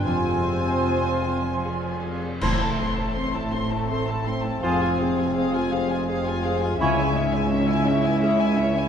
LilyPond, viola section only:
\new Staff \with { instrumentName = "Viola section" } { \time 3/4 \key f \lydian \tempo 4 = 82 f'2~ f'8. r16 | c'16 e'16 c'16 e'16 c'16 e'16 c'16 e'16 c'16 e'16 c'16 e'16 | aes'16 f'16 aes'16 f'16 aes'16 f'16 aes'16 f'16 aes'16 f'16 aes'16 f'16 | cis'16 e'16 cis'16 e'16 cis'16 e'16 cis'16 e'16 cis'16 e'16 cis'16 e'16 | }